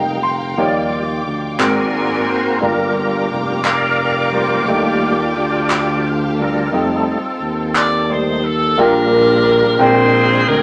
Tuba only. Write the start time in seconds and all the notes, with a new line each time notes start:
Already playing: F1
0.58 D#2
1.26 D2
1.60 G#1
2.62 G1
3.31 F1
4.68 D#2
5.36 D2
6.73 F2
7.41 D#2
8.78 A#1
9.80 A#1
10.48 D2